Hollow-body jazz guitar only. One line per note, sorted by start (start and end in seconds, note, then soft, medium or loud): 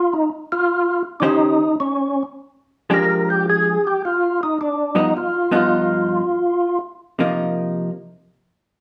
1.22 1.57 D#3 medium
1.22 1.57 C#4 medium
1.22 1.57 G4 medium
1.22 1.57 C5 medium
2.90 3.76 F3 medium
2.90 3.77 G#3 medium
2.90 3.77 D4 medium
2.90 3.77 G4 medium
4.95 5.11 G2 medium
4.95 5.11 F3 medium
4.95 5.11 B3 medium
4.95 5.12 D#4 medium
5.51 6.21 G2 medium
5.51 6.21 F3 medium
5.51 6.22 B3 medium
5.51 6.22 D#4 medium
7.19 7.89 C3 medium
7.19 7.89 F3 medium
7.19 7.89 A#3 medium
7.19 7.90 D#4 medium